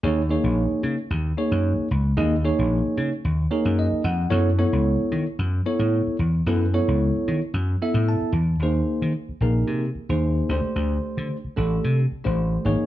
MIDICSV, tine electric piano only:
0, 0, Header, 1, 2, 480
1, 0, Start_track
1, 0, Tempo, 536193
1, 35, Time_signature, 4, 2, 24, 8
1, 11512, End_track
2, 0, Start_track
2, 0, Title_t, "Tine electric piano"
2, 0, Program_c, 0, 4
2, 29, Note_on_c, 0, 58, 82
2, 31, Note_on_c, 0, 63, 73
2, 31, Note_on_c, 0, 68, 77
2, 39, Note_on_c, 0, 73, 90
2, 184, Note_off_c, 0, 58, 0
2, 185, Note_off_c, 0, 63, 0
2, 185, Note_off_c, 0, 68, 0
2, 189, Note_off_c, 0, 73, 0
2, 266, Note_on_c, 0, 58, 78
2, 272, Note_on_c, 0, 63, 68
2, 274, Note_on_c, 0, 68, 67
2, 276, Note_on_c, 0, 73, 80
2, 865, Note_off_c, 0, 58, 0
2, 868, Note_off_c, 0, 63, 0
2, 870, Note_off_c, 0, 68, 0
2, 871, Note_off_c, 0, 73, 0
2, 1231, Note_on_c, 0, 63, 62
2, 1233, Note_on_c, 0, 58, 69
2, 1235, Note_on_c, 0, 68, 63
2, 1236, Note_on_c, 0, 73, 85
2, 1677, Note_off_c, 0, 63, 0
2, 1678, Note_off_c, 0, 58, 0
2, 1679, Note_off_c, 0, 68, 0
2, 1679, Note_off_c, 0, 73, 0
2, 1943, Note_on_c, 0, 63, 76
2, 1944, Note_on_c, 0, 58, 85
2, 1945, Note_on_c, 0, 68, 75
2, 1946, Note_on_c, 0, 75, 91
2, 2101, Note_off_c, 0, 63, 0
2, 2102, Note_off_c, 0, 58, 0
2, 2102, Note_off_c, 0, 68, 0
2, 2102, Note_off_c, 0, 75, 0
2, 2189, Note_on_c, 0, 58, 75
2, 2190, Note_on_c, 0, 68, 72
2, 2192, Note_on_c, 0, 63, 73
2, 2195, Note_on_c, 0, 73, 85
2, 2787, Note_off_c, 0, 58, 0
2, 2788, Note_off_c, 0, 63, 0
2, 2788, Note_off_c, 0, 68, 0
2, 2790, Note_off_c, 0, 73, 0
2, 3141, Note_on_c, 0, 58, 81
2, 3143, Note_on_c, 0, 73, 64
2, 3144, Note_on_c, 0, 63, 68
2, 3146, Note_on_c, 0, 70, 81
2, 3147, Note_on_c, 0, 68, 71
2, 3372, Note_off_c, 0, 73, 0
2, 3391, Note_on_c, 0, 75, 74
2, 3592, Note_off_c, 0, 58, 0
2, 3593, Note_off_c, 0, 63, 0
2, 3594, Note_off_c, 0, 68, 0
2, 3594, Note_off_c, 0, 70, 0
2, 3616, Note_off_c, 0, 75, 0
2, 3620, Note_on_c, 0, 78, 69
2, 3850, Note_off_c, 0, 78, 0
2, 3851, Note_on_c, 0, 59, 90
2, 3853, Note_on_c, 0, 69, 78
2, 3854, Note_on_c, 0, 64, 80
2, 3855, Note_on_c, 0, 73, 95
2, 4015, Note_off_c, 0, 59, 0
2, 4016, Note_off_c, 0, 69, 0
2, 4017, Note_off_c, 0, 64, 0
2, 4017, Note_off_c, 0, 73, 0
2, 4104, Note_on_c, 0, 64, 74
2, 4107, Note_on_c, 0, 69, 71
2, 4108, Note_on_c, 0, 73, 87
2, 4109, Note_on_c, 0, 59, 84
2, 4704, Note_off_c, 0, 64, 0
2, 4706, Note_off_c, 0, 69, 0
2, 4706, Note_off_c, 0, 73, 0
2, 4707, Note_off_c, 0, 59, 0
2, 5065, Note_on_c, 0, 59, 74
2, 5070, Note_on_c, 0, 64, 70
2, 5070, Note_on_c, 0, 73, 86
2, 5071, Note_on_c, 0, 69, 68
2, 5513, Note_off_c, 0, 59, 0
2, 5516, Note_off_c, 0, 64, 0
2, 5516, Note_off_c, 0, 69, 0
2, 5516, Note_off_c, 0, 73, 0
2, 5793, Note_on_c, 0, 59, 81
2, 5795, Note_on_c, 0, 69, 76
2, 5796, Note_on_c, 0, 64, 80
2, 5800, Note_on_c, 0, 71, 90
2, 5946, Note_off_c, 0, 59, 0
2, 5947, Note_off_c, 0, 64, 0
2, 5947, Note_off_c, 0, 69, 0
2, 5949, Note_off_c, 0, 71, 0
2, 6032, Note_on_c, 0, 59, 75
2, 6034, Note_on_c, 0, 69, 70
2, 6035, Note_on_c, 0, 73, 83
2, 6038, Note_on_c, 0, 64, 73
2, 6628, Note_off_c, 0, 59, 0
2, 6630, Note_off_c, 0, 69, 0
2, 6630, Note_off_c, 0, 73, 0
2, 6632, Note_off_c, 0, 64, 0
2, 6998, Note_on_c, 0, 59, 72
2, 7002, Note_on_c, 0, 69, 67
2, 7003, Note_on_c, 0, 64, 68
2, 7004, Note_on_c, 0, 76, 80
2, 7238, Note_on_c, 0, 81, 72
2, 7440, Note_off_c, 0, 59, 0
2, 7442, Note_off_c, 0, 69, 0
2, 7443, Note_off_c, 0, 64, 0
2, 7443, Note_off_c, 0, 76, 0
2, 7682, Note_off_c, 0, 81, 0
2, 7720, Note_on_c, 0, 68, 66
2, 7723, Note_on_c, 0, 63, 66
2, 7724, Note_on_c, 0, 58, 76
2, 7725, Note_on_c, 0, 72, 81
2, 8161, Note_off_c, 0, 68, 0
2, 8163, Note_off_c, 0, 58, 0
2, 8163, Note_off_c, 0, 63, 0
2, 8164, Note_off_c, 0, 72, 0
2, 8431, Note_on_c, 0, 58, 79
2, 8432, Note_on_c, 0, 63, 64
2, 8435, Note_on_c, 0, 70, 86
2, 8437, Note_on_c, 0, 68, 66
2, 8808, Note_off_c, 0, 58, 0
2, 8808, Note_off_c, 0, 63, 0
2, 8809, Note_off_c, 0, 70, 0
2, 8810, Note_off_c, 0, 68, 0
2, 9038, Note_on_c, 0, 58, 72
2, 9039, Note_on_c, 0, 63, 65
2, 9039, Note_on_c, 0, 68, 65
2, 9041, Note_on_c, 0, 72, 77
2, 9393, Note_off_c, 0, 58, 0
2, 9393, Note_off_c, 0, 63, 0
2, 9393, Note_off_c, 0, 68, 0
2, 9394, Note_off_c, 0, 72, 0
2, 9398, Note_on_c, 0, 57, 76
2, 9400, Note_on_c, 0, 62, 74
2, 9403, Note_on_c, 0, 67, 73
2, 9410, Note_on_c, 0, 72, 90
2, 10167, Note_off_c, 0, 57, 0
2, 10168, Note_off_c, 0, 62, 0
2, 10170, Note_off_c, 0, 67, 0
2, 10173, Note_off_c, 0, 72, 0
2, 10353, Note_on_c, 0, 57, 71
2, 10357, Note_on_c, 0, 62, 67
2, 10358, Note_on_c, 0, 67, 73
2, 10359, Note_on_c, 0, 69, 87
2, 10729, Note_off_c, 0, 57, 0
2, 10731, Note_off_c, 0, 62, 0
2, 10731, Note_off_c, 0, 67, 0
2, 10732, Note_off_c, 0, 69, 0
2, 10960, Note_on_c, 0, 62, 61
2, 10962, Note_on_c, 0, 57, 77
2, 10962, Note_on_c, 0, 67, 64
2, 10967, Note_on_c, 0, 72, 79
2, 11314, Note_off_c, 0, 62, 0
2, 11315, Note_off_c, 0, 57, 0
2, 11315, Note_off_c, 0, 67, 0
2, 11317, Note_off_c, 0, 72, 0
2, 11323, Note_on_c, 0, 58, 82
2, 11327, Note_on_c, 0, 63, 75
2, 11331, Note_on_c, 0, 68, 79
2, 11333, Note_on_c, 0, 73, 97
2, 11512, Note_off_c, 0, 58, 0
2, 11512, Note_off_c, 0, 63, 0
2, 11512, Note_off_c, 0, 68, 0
2, 11512, Note_off_c, 0, 73, 0
2, 11512, End_track
0, 0, End_of_file